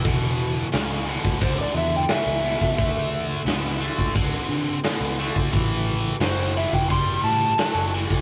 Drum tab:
HH |o---o---o---o---|o---o---o---o---|o---o---o---o---|
SD |----o-------o---|----o-------o---|----o-------o---|
BD |o------oo------o|o------oo------o|o------oo------o|